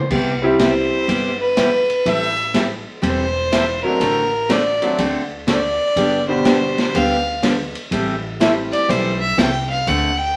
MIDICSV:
0, 0, Header, 1, 6, 480
1, 0, Start_track
1, 0, Key_signature, 0, "major"
1, 0, Tempo, 488202
1, 100, Time_signature, 4, 2, 24, 8
1, 10191, End_track
2, 0, Start_track
2, 0, Title_t, "Fiddle"
2, 0, Program_c, 0, 110
2, 603, Note_on_c, 0, 72, 83
2, 1349, Note_off_c, 0, 72, 0
2, 1390, Note_on_c, 0, 71, 95
2, 2044, Note_on_c, 0, 76, 105
2, 2059, Note_off_c, 0, 71, 0
2, 2512, Note_off_c, 0, 76, 0
2, 2998, Note_on_c, 0, 72, 90
2, 3746, Note_off_c, 0, 72, 0
2, 3773, Note_on_c, 0, 70, 100
2, 4432, Note_on_c, 0, 74, 87
2, 4447, Note_off_c, 0, 70, 0
2, 4907, Note_off_c, 0, 74, 0
2, 5408, Note_on_c, 0, 74, 90
2, 6152, Note_off_c, 0, 74, 0
2, 6177, Note_on_c, 0, 72, 96
2, 6844, Note_on_c, 0, 77, 94
2, 6858, Note_off_c, 0, 72, 0
2, 7313, Note_off_c, 0, 77, 0
2, 8574, Note_on_c, 0, 74, 95
2, 8746, Note_on_c, 0, 72, 91
2, 8760, Note_off_c, 0, 74, 0
2, 9042, Note_off_c, 0, 72, 0
2, 9047, Note_on_c, 0, 76, 97
2, 9228, Note_on_c, 0, 79, 98
2, 9243, Note_off_c, 0, 76, 0
2, 9527, Note_off_c, 0, 79, 0
2, 9533, Note_on_c, 0, 77, 104
2, 9717, Note_on_c, 0, 78, 92
2, 9732, Note_off_c, 0, 77, 0
2, 10000, Note_on_c, 0, 79, 102
2, 10014, Note_off_c, 0, 78, 0
2, 10191, Note_off_c, 0, 79, 0
2, 10191, End_track
3, 0, Start_track
3, 0, Title_t, "Steel-string acoustic guitar"
3, 0, Program_c, 1, 25
3, 107, Note_on_c, 1, 48, 54
3, 109, Note_on_c, 1, 55, 53
3, 112, Note_on_c, 1, 67, 60
3, 113, Note_on_c, 1, 59, 58
3, 113, Note_on_c, 1, 64, 56
3, 322, Note_off_c, 1, 48, 0
3, 323, Note_off_c, 1, 55, 0
3, 325, Note_off_c, 1, 59, 0
3, 325, Note_off_c, 1, 64, 0
3, 325, Note_off_c, 1, 67, 0
3, 584, Note_on_c, 1, 48, 79
3, 585, Note_on_c, 1, 55, 77
3, 590, Note_on_c, 1, 59, 75
3, 593, Note_on_c, 1, 64, 70
3, 595, Note_on_c, 1, 67, 74
3, 698, Note_off_c, 1, 48, 0
3, 698, Note_off_c, 1, 55, 0
3, 701, Note_off_c, 1, 59, 0
3, 702, Note_off_c, 1, 64, 0
3, 703, Note_off_c, 1, 67, 0
3, 1059, Note_on_c, 1, 48, 62
3, 1064, Note_on_c, 1, 55, 61
3, 1067, Note_on_c, 1, 64, 62
3, 1068, Note_on_c, 1, 59, 59
3, 1070, Note_on_c, 1, 67, 66
3, 1278, Note_off_c, 1, 48, 0
3, 1281, Note_off_c, 1, 55, 0
3, 1282, Note_off_c, 1, 59, 0
3, 1282, Note_off_c, 1, 64, 0
3, 1284, Note_off_c, 1, 67, 0
3, 1537, Note_on_c, 1, 48, 74
3, 1541, Note_on_c, 1, 55, 74
3, 1543, Note_on_c, 1, 64, 87
3, 1544, Note_on_c, 1, 59, 81
3, 1544, Note_on_c, 1, 67, 81
3, 1654, Note_off_c, 1, 48, 0
3, 1656, Note_off_c, 1, 55, 0
3, 1657, Note_off_c, 1, 64, 0
3, 1658, Note_off_c, 1, 59, 0
3, 1658, Note_off_c, 1, 67, 0
3, 2023, Note_on_c, 1, 52, 55
3, 2024, Note_on_c, 1, 55, 59
3, 2028, Note_on_c, 1, 60, 57
3, 2028, Note_on_c, 1, 64, 62
3, 2029, Note_on_c, 1, 69, 69
3, 2240, Note_off_c, 1, 52, 0
3, 2241, Note_off_c, 1, 55, 0
3, 2243, Note_off_c, 1, 60, 0
3, 2243, Note_off_c, 1, 64, 0
3, 2243, Note_off_c, 1, 69, 0
3, 2497, Note_on_c, 1, 52, 71
3, 2504, Note_on_c, 1, 55, 74
3, 2505, Note_on_c, 1, 64, 83
3, 2507, Note_on_c, 1, 60, 80
3, 2507, Note_on_c, 1, 69, 74
3, 2614, Note_off_c, 1, 52, 0
3, 2618, Note_off_c, 1, 55, 0
3, 2618, Note_off_c, 1, 64, 0
3, 2619, Note_off_c, 1, 60, 0
3, 2619, Note_off_c, 1, 69, 0
3, 2967, Note_on_c, 1, 52, 59
3, 2969, Note_on_c, 1, 55, 62
3, 2974, Note_on_c, 1, 69, 69
3, 2975, Note_on_c, 1, 60, 61
3, 2976, Note_on_c, 1, 64, 59
3, 3192, Note_off_c, 1, 52, 0
3, 3193, Note_off_c, 1, 55, 0
3, 3196, Note_off_c, 1, 60, 0
3, 3196, Note_off_c, 1, 64, 0
3, 3196, Note_off_c, 1, 69, 0
3, 3458, Note_on_c, 1, 52, 69
3, 3461, Note_on_c, 1, 60, 81
3, 3464, Note_on_c, 1, 55, 74
3, 3464, Note_on_c, 1, 64, 85
3, 3467, Note_on_c, 1, 69, 82
3, 3575, Note_off_c, 1, 52, 0
3, 3576, Note_off_c, 1, 60, 0
3, 3578, Note_off_c, 1, 55, 0
3, 3578, Note_off_c, 1, 64, 0
3, 3580, Note_off_c, 1, 69, 0
3, 3929, Note_on_c, 1, 50, 59
3, 3933, Note_on_c, 1, 57, 58
3, 3933, Note_on_c, 1, 60, 60
3, 3935, Note_on_c, 1, 66, 59
3, 3938, Note_on_c, 1, 69, 67
3, 4153, Note_off_c, 1, 50, 0
3, 4155, Note_off_c, 1, 57, 0
3, 4155, Note_off_c, 1, 60, 0
3, 4156, Note_off_c, 1, 66, 0
3, 4158, Note_off_c, 1, 69, 0
3, 4416, Note_on_c, 1, 50, 69
3, 4416, Note_on_c, 1, 57, 71
3, 4420, Note_on_c, 1, 60, 85
3, 4420, Note_on_c, 1, 66, 74
3, 4420, Note_on_c, 1, 69, 72
3, 4534, Note_off_c, 1, 50, 0
3, 4534, Note_off_c, 1, 57, 0
3, 4536, Note_off_c, 1, 60, 0
3, 4536, Note_off_c, 1, 66, 0
3, 4536, Note_off_c, 1, 69, 0
3, 4901, Note_on_c, 1, 50, 57
3, 4906, Note_on_c, 1, 57, 61
3, 4906, Note_on_c, 1, 60, 63
3, 4909, Note_on_c, 1, 69, 66
3, 4910, Note_on_c, 1, 66, 69
3, 5120, Note_off_c, 1, 50, 0
3, 5122, Note_off_c, 1, 57, 0
3, 5122, Note_off_c, 1, 60, 0
3, 5123, Note_off_c, 1, 69, 0
3, 5124, Note_off_c, 1, 66, 0
3, 5377, Note_on_c, 1, 50, 71
3, 5384, Note_on_c, 1, 57, 70
3, 5385, Note_on_c, 1, 66, 76
3, 5385, Note_on_c, 1, 69, 81
3, 5388, Note_on_c, 1, 60, 82
3, 5495, Note_off_c, 1, 50, 0
3, 5498, Note_off_c, 1, 57, 0
3, 5499, Note_off_c, 1, 66, 0
3, 5499, Note_off_c, 1, 69, 0
3, 5500, Note_off_c, 1, 60, 0
3, 5864, Note_on_c, 1, 50, 57
3, 5865, Note_on_c, 1, 55, 58
3, 5869, Note_on_c, 1, 59, 60
3, 5871, Note_on_c, 1, 62, 61
3, 5875, Note_on_c, 1, 67, 63
3, 6081, Note_off_c, 1, 50, 0
3, 6082, Note_off_c, 1, 55, 0
3, 6084, Note_off_c, 1, 59, 0
3, 6085, Note_off_c, 1, 62, 0
3, 6087, Note_off_c, 1, 67, 0
3, 6339, Note_on_c, 1, 50, 71
3, 6340, Note_on_c, 1, 55, 67
3, 6343, Note_on_c, 1, 67, 86
3, 6344, Note_on_c, 1, 59, 82
3, 6345, Note_on_c, 1, 62, 80
3, 6456, Note_off_c, 1, 50, 0
3, 6456, Note_off_c, 1, 55, 0
3, 6458, Note_off_c, 1, 67, 0
3, 6459, Note_off_c, 1, 59, 0
3, 6459, Note_off_c, 1, 62, 0
3, 6825, Note_on_c, 1, 55, 61
3, 6826, Note_on_c, 1, 50, 60
3, 6831, Note_on_c, 1, 59, 62
3, 6833, Note_on_c, 1, 62, 66
3, 6834, Note_on_c, 1, 67, 70
3, 7042, Note_off_c, 1, 55, 0
3, 7043, Note_off_c, 1, 50, 0
3, 7045, Note_off_c, 1, 59, 0
3, 7046, Note_off_c, 1, 62, 0
3, 7047, Note_off_c, 1, 67, 0
3, 7299, Note_on_c, 1, 50, 69
3, 7301, Note_on_c, 1, 55, 78
3, 7305, Note_on_c, 1, 59, 71
3, 7305, Note_on_c, 1, 62, 82
3, 7310, Note_on_c, 1, 67, 79
3, 7416, Note_off_c, 1, 50, 0
3, 7417, Note_off_c, 1, 55, 0
3, 7419, Note_off_c, 1, 59, 0
3, 7419, Note_off_c, 1, 62, 0
3, 7422, Note_off_c, 1, 67, 0
3, 7787, Note_on_c, 1, 52, 57
3, 7789, Note_on_c, 1, 64, 62
3, 7790, Note_on_c, 1, 55, 54
3, 7790, Note_on_c, 1, 60, 62
3, 7793, Note_on_c, 1, 69, 65
3, 8003, Note_off_c, 1, 52, 0
3, 8004, Note_off_c, 1, 64, 0
3, 8005, Note_off_c, 1, 55, 0
3, 8005, Note_off_c, 1, 60, 0
3, 8006, Note_off_c, 1, 69, 0
3, 8262, Note_on_c, 1, 55, 74
3, 8263, Note_on_c, 1, 52, 76
3, 8266, Note_on_c, 1, 69, 76
3, 8268, Note_on_c, 1, 64, 86
3, 8270, Note_on_c, 1, 60, 72
3, 8378, Note_off_c, 1, 55, 0
3, 8379, Note_off_c, 1, 52, 0
3, 8380, Note_off_c, 1, 69, 0
3, 8381, Note_off_c, 1, 64, 0
3, 8382, Note_off_c, 1, 60, 0
3, 8737, Note_on_c, 1, 52, 61
3, 8737, Note_on_c, 1, 55, 65
3, 8744, Note_on_c, 1, 64, 63
3, 8745, Note_on_c, 1, 60, 66
3, 8749, Note_on_c, 1, 69, 71
3, 8959, Note_off_c, 1, 52, 0
3, 8959, Note_off_c, 1, 55, 0
3, 8962, Note_off_c, 1, 64, 0
3, 8963, Note_off_c, 1, 60, 0
3, 8965, Note_off_c, 1, 69, 0
3, 9214, Note_on_c, 1, 52, 66
3, 9219, Note_on_c, 1, 60, 81
3, 9220, Note_on_c, 1, 55, 83
3, 9223, Note_on_c, 1, 64, 82
3, 9226, Note_on_c, 1, 69, 85
3, 9335, Note_off_c, 1, 52, 0
3, 9337, Note_off_c, 1, 60, 0
3, 9338, Note_off_c, 1, 55, 0
3, 9339, Note_off_c, 1, 64, 0
3, 9340, Note_off_c, 1, 69, 0
3, 9704, Note_on_c, 1, 50, 63
3, 9705, Note_on_c, 1, 57, 63
3, 9707, Note_on_c, 1, 60, 66
3, 9709, Note_on_c, 1, 66, 63
3, 9713, Note_on_c, 1, 69, 62
3, 9923, Note_off_c, 1, 50, 0
3, 9923, Note_off_c, 1, 57, 0
3, 9924, Note_off_c, 1, 60, 0
3, 9925, Note_off_c, 1, 66, 0
3, 9927, Note_off_c, 1, 69, 0
3, 10191, End_track
4, 0, Start_track
4, 0, Title_t, "Upright piano"
4, 0, Program_c, 2, 0
4, 413, Note_on_c, 2, 55, 89
4, 422, Note_on_c, 2, 60, 88
4, 427, Note_on_c, 2, 64, 85
4, 434, Note_on_c, 2, 67, 96
4, 1026, Note_off_c, 2, 55, 0
4, 1030, Note_off_c, 2, 60, 0
4, 1033, Note_off_c, 2, 64, 0
4, 1037, Note_off_c, 2, 67, 0
4, 3774, Note_on_c, 2, 54, 72
4, 3776, Note_on_c, 2, 57, 68
4, 3780, Note_on_c, 2, 60, 70
4, 3788, Note_on_c, 2, 62, 62
4, 3792, Note_on_c, 2, 66, 82
4, 3923, Note_off_c, 2, 54, 0
4, 3924, Note_off_c, 2, 57, 0
4, 3926, Note_off_c, 2, 60, 0
4, 3930, Note_off_c, 2, 62, 0
4, 3932, Note_off_c, 2, 66, 0
4, 4737, Note_on_c, 2, 54, 79
4, 4741, Note_on_c, 2, 57, 72
4, 4748, Note_on_c, 2, 60, 69
4, 4749, Note_on_c, 2, 62, 75
4, 4756, Note_on_c, 2, 66, 89
4, 4885, Note_off_c, 2, 54, 0
4, 4887, Note_off_c, 2, 57, 0
4, 4890, Note_off_c, 2, 60, 0
4, 4891, Note_off_c, 2, 62, 0
4, 4894, Note_off_c, 2, 66, 0
4, 6176, Note_on_c, 2, 50, 78
4, 6177, Note_on_c, 2, 55, 74
4, 6183, Note_on_c, 2, 47, 71
4, 6189, Note_on_c, 2, 62, 71
4, 6192, Note_on_c, 2, 67, 85
4, 6788, Note_off_c, 2, 50, 0
4, 6789, Note_off_c, 2, 55, 0
4, 6792, Note_off_c, 2, 47, 0
4, 6795, Note_off_c, 2, 62, 0
4, 6796, Note_off_c, 2, 67, 0
4, 8262, Note_on_c, 2, 55, 58
4, 8263, Note_on_c, 2, 57, 55
4, 8267, Note_on_c, 2, 60, 54
4, 8274, Note_on_c, 2, 64, 51
4, 8277, Note_on_c, 2, 67, 63
4, 8996, Note_off_c, 2, 55, 0
4, 8996, Note_off_c, 2, 57, 0
4, 8998, Note_off_c, 2, 60, 0
4, 9002, Note_off_c, 2, 64, 0
4, 9003, Note_off_c, 2, 67, 0
4, 10191, End_track
5, 0, Start_track
5, 0, Title_t, "Upright bass"
5, 0, Program_c, 3, 32
5, 101, Note_on_c, 3, 36, 83
5, 869, Note_off_c, 3, 36, 0
5, 1063, Note_on_c, 3, 31, 81
5, 1830, Note_off_c, 3, 31, 0
5, 2021, Note_on_c, 3, 33, 91
5, 2789, Note_off_c, 3, 33, 0
5, 2980, Note_on_c, 3, 28, 84
5, 3748, Note_off_c, 3, 28, 0
5, 3940, Note_on_c, 3, 33, 82
5, 4708, Note_off_c, 3, 33, 0
5, 4899, Note_on_c, 3, 38, 81
5, 5668, Note_off_c, 3, 38, 0
5, 5862, Note_on_c, 3, 31, 84
5, 6630, Note_off_c, 3, 31, 0
5, 6827, Note_on_c, 3, 38, 85
5, 7594, Note_off_c, 3, 38, 0
5, 7779, Note_on_c, 3, 33, 85
5, 8549, Note_off_c, 3, 33, 0
5, 8743, Note_on_c, 3, 35, 88
5, 9152, Note_off_c, 3, 35, 0
5, 9225, Note_on_c, 3, 36, 84
5, 9633, Note_off_c, 3, 36, 0
5, 9703, Note_on_c, 3, 38, 85
5, 10191, Note_off_c, 3, 38, 0
5, 10191, End_track
6, 0, Start_track
6, 0, Title_t, "Drums"
6, 103, Note_on_c, 9, 36, 73
6, 103, Note_on_c, 9, 49, 75
6, 201, Note_off_c, 9, 49, 0
6, 202, Note_off_c, 9, 36, 0
6, 584, Note_on_c, 9, 36, 25
6, 584, Note_on_c, 9, 38, 71
6, 584, Note_on_c, 9, 44, 61
6, 584, Note_on_c, 9, 51, 72
6, 682, Note_off_c, 9, 36, 0
6, 682, Note_off_c, 9, 38, 0
6, 682, Note_off_c, 9, 44, 0
6, 682, Note_off_c, 9, 51, 0
6, 1065, Note_on_c, 9, 36, 28
6, 1070, Note_on_c, 9, 51, 70
6, 1164, Note_off_c, 9, 36, 0
6, 1168, Note_off_c, 9, 51, 0
6, 1541, Note_on_c, 9, 38, 76
6, 1541, Note_on_c, 9, 44, 66
6, 1541, Note_on_c, 9, 51, 70
6, 1543, Note_on_c, 9, 36, 26
6, 1640, Note_off_c, 9, 38, 0
6, 1640, Note_off_c, 9, 44, 0
6, 1640, Note_off_c, 9, 51, 0
6, 1642, Note_off_c, 9, 36, 0
6, 1863, Note_on_c, 9, 51, 50
6, 1962, Note_off_c, 9, 51, 0
6, 2025, Note_on_c, 9, 36, 21
6, 2025, Note_on_c, 9, 51, 62
6, 2123, Note_off_c, 9, 36, 0
6, 2124, Note_off_c, 9, 51, 0
6, 2500, Note_on_c, 9, 38, 72
6, 2500, Note_on_c, 9, 44, 66
6, 2500, Note_on_c, 9, 51, 69
6, 2502, Note_on_c, 9, 36, 23
6, 2598, Note_off_c, 9, 38, 0
6, 2598, Note_off_c, 9, 44, 0
6, 2598, Note_off_c, 9, 51, 0
6, 2600, Note_off_c, 9, 36, 0
6, 2981, Note_on_c, 9, 36, 24
6, 2982, Note_on_c, 9, 51, 70
6, 3080, Note_off_c, 9, 36, 0
6, 3080, Note_off_c, 9, 51, 0
6, 3461, Note_on_c, 9, 36, 21
6, 3465, Note_on_c, 9, 38, 77
6, 3465, Note_on_c, 9, 44, 59
6, 3465, Note_on_c, 9, 51, 78
6, 3559, Note_off_c, 9, 36, 0
6, 3563, Note_off_c, 9, 38, 0
6, 3563, Note_off_c, 9, 44, 0
6, 3563, Note_off_c, 9, 51, 0
6, 3940, Note_on_c, 9, 36, 22
6, 3941, Note_on_c, 9, 51, 66
6, 4038, Note_off_c, 9, 36, 0
6, 4039, Note_off_c, 9, 51, 0
6, 4419, Note_on_c, 9, 36, 21
6, 4421, Note_on_c, 9, 38, 76
6, 4421, Note_on_c, 9, 44, 55
6, 4421, Note_on_c, 9, 51, 72
6, 4518, Note_off_c, 9, 36, 0
6, 4519, Note_off_c, 9, 38, 0
6, 4519, Note_off_c, 9, 44, 0
6, 4519, Note_off_c, 9, 51, 0
6, 4738, Note_on_c, 9, 51, 51
6, 4836, Note_off_c, 9, 51, 0
6, 4899, Note_on_c, 9, 36, 22
6, 4900, Note_on_c, 9, 51, 68
6, 4998, Note_off_c, 9, 36, 0
6, 4999, Note_off_c, 9, 51, 0
6, 5382, Note_on_c, 9, 36, 20
6, 5383, Note_on_c, 9, 38, 75
6, 5383, Note_on_c, 9, 44, 67
6, 5383, Note_on_c, 9, 51, 77
6, 5480, Note_off_c, 9, 36, 0
6, 5481, Note_off_c, 9, 38, 0
6, 5481, Note_off_c, 9, 44, 0
6, 5481, Note_off_c, 9, 51, 0
6, 5863, Note_on_c, 9, 36, 28
6, 5866, Note_on_c, 9, 51, 69
6, 5962, Note_off_c, 9, 36, 0
6, 5964, Note_off_c, 9, 51, 0
6, 6343, Note_on_c, 9, 36, 28
6, 6343, Note_on_c, 9, 38, 76
6, 6343, Note_on_c, 9, 44, 65
6, 6343, Note_on_c, 9, 51, 73
6, 6441, Note_off_c, 9, 36, 0
6, 6442, Note_off_c, 9, 38, 0
6, 6442, Note_off_c, 9, 44, 0
6, 6442, Note_off_c, 9, 51, 0
6, 6667, Note_on_c, 9, 38, 64
6, 6667, Note_on_c, 9, 51, 50
6, 6765, Note_off_c, 9, 38, 0
6, 6765, Note_off_c, 9, 51, 0
6, 6825, Note_on_c, 9, 36, 25
6, 6829, Note_on_c, 9, 51, 71
6, 6923, Note_off_c, 9, 36, 0
6, 6927, Note_off_c, 9, 51, 0
6, 7304, Note_on_c, 9, 36, 22
6, 7306, Note_on_c, 9, 38, 79
6, 7306, Note_on_c, 9, 44, 61
6, 7306, Note_on_c, 9, 51, 81
6, 7402, Note_off_c, 9, 36, 0
6, 7405, Note_off_c, 9, 38, 0
6, 7405, Note_off_c, 9, 44, 0
6, 7405, Note_off_c, 9, 51, 0
6, 7622, Note_on_c, 9, 51, 51
6, 7720, Note_off_c, 9, 51, 0
6, 7784, Note_on_c, 9, 36, 28
6, 7785, Note_on_c, 9, 51, 69
6, 7883, Note_off_c, 9, 36, 0
6, 7883, Note_off_c, 9, 51, 0
6, 8264, Note_on_c, 9, 36, 26
6, 8267, Note_on_c, 9, 38, 77
6, 8267, Note_on_c, 9, 44, 59
6, 8267, Note_on_c, 9, 51, 72
6, 8362, Note_off_c, 9, 36, 0
6, 8366, Note_off_c, 9, 38, 0
6, 8366, Note_off_c, 9, 44, 0
6, 8366, Note_off_c, 9, 51, 0
6, 8584, Note_on_c, 9, 51, 50
6, 8682, Note_off_c, 9, 51, 0
6, 8746, Note_on_c, 9, 36, 19
6, 8752, Note_on_c, 9, 51, 73
6, 8844, Note_off_c, 9, 36, 0
6, 8850, Note_off_c, 9, 51, 0
6, 9226, Note_on_c, 9, 36, 28
6, 9229, Note_on_c, 9, 38, 79
6, 9229, Note_on_c, 9, 44, 68
6, 9229, Note_on_c, 9, 51, 78
6, 9324, Note_off_c, 9, 36, 0
6, 9327, Note_off_c, 9, 38, 0
6, 9327, Note_off_c, 9, 44, 0
6, 9327, Note_off_c, 9, 51, 0
6, 9704, Note_on_c, 9, 36, 25
6, 9706, Note_on_c, 9, 51, 67
6, 9803, Note_off_c, 9, 36, 0
6, 9804, Note_off_c, 9, 51, 0
6, 10191, End_track
0, 0, End_of_file